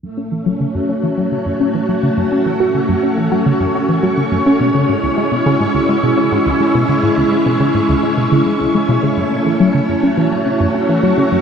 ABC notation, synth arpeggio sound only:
X:1
M:4/4
L:1/16
Q:1/4=105
K:F#m
V:1 name="Synth arpeggio sound" clef=bass
F,, C E, F, C, F,, C E, F, C, F,, C E, F, C, F,, | C E, F, C, F,, C E, F, C, F,, C E, F, C, F,, C | B,, C, G,, C,, G, B,, C, G,, C,, G, B,, C, G,, C,, G, B,, | C, G,, C,, G, B,, C, G,, C,, G, B,, C, G,, C,, G, B,, C, |
F,, C E, F, C, F,, C E, F, C, F,, C E, F, C, F,, |]